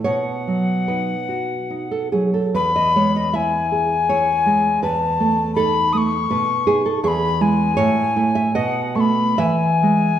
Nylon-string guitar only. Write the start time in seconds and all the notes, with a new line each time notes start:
0.04 B2 C#5
0.47 F#3
0.88 D#4 B4
1.29 F#4
1.70 D#4
1.91 A4
2.12 F#3 G#4
2.34 A4
2.54 E2 B4
2.76 D#5
2.96 G#3 C#5
3.16 D#5
3.33 E4 E5
3.72 G#4
4.09 E4 C#5
4.46 G#3
4.82 E2 B4
5.20 A3
5.56 D#4 A4
5.94 A3
6.31 B2 B4
6.67 D#4 G#4
6.86 A4
7.04 E2 G#4
7.41 G#3 E4
7.77 A2 C#5
8.16 A3 E4
8.35 E5
8.55 B2 D#5
8.95 A3 B3
9.38 E3 E5
9.83 G#3